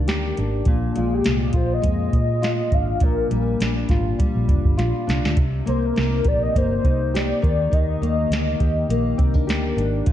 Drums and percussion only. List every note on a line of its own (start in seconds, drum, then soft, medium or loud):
0.08 snare medium
0.08 closed hi-hat medium
0.37 closed hi-hat medium
0.65 kick loud
0.65 closed hi-hat medium
0.96 closed hi-hat medium
1.24 snare loud
1.24 closed hi-hat medium
1.53 kick medium
1.53 closed hi-hat medium
1.84 kick medium
1.84 closed hi-hat medium
2.13 kick medium
2.13 closed hi-hat medium
2.43 snare medium
2.43 closed hi-hat medium
2.72 kick medium
2.72 closed hi-hat soft
3.00 kick loud
3.00 closed hi-hat medium
3.31 closed hi-hat medium
3.60 snare loud
3.60 closed hi-hat medium
3.89 kick medium
3.89 snare soft
3.89 closed hi-hat medium
4.20 kick medium
4.20 closed hi-hat loud
4.49 kick medium
4.49 closed hi-hat medium
4.65 kick medium
4.78 snare soft
4.78 closed hi-hat medium
5.09 snare medium
5.09 closed hi-hat soft
5.25 snare medium
5.37 kick medium
5.37 closed hi-hat medium
5.67 closed hi-hat medium
5.96 snare loud
5.96 closed hi-hat medium
6.25 kick medium
6.25 closed hi-hat medium
6.56 kick medium
6.56 closed hi-hat medium
6.84 kick medium
6.84 closed hi-hat medium
7.15 snare medium
7.15 closed hi-hat medium
7.44 kick medium
7.44 closed hi-hat soft
7.73 kick loud
7.73 closed hi-hat medium
8.03 closed hi-hat medium
8.32 snare loud
8.32 closed hi-hat medium
8.60 kick medium
8.60 closed hi-hat medium
8.90 closed hi-hat medium
9.19 kick medium
9.19 closed hi-hat medium
9.35 kick medium
9.49 snare medium
9.49 closed hi-hat medium
9.78 closed hi-hat medium
10.06 kick medium
10.06 closed hi-hat medium